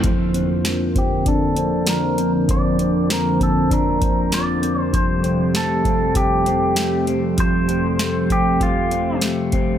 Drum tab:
HH |xxxxxxxx|xxxxxxxx|xxxxxxxx|xxxxxxxx|
SD |--o---o-|--o---o-|--o---o-|--o---o-|
BD |o--oo---|o--ooo--|o--oo---|o--oo--o|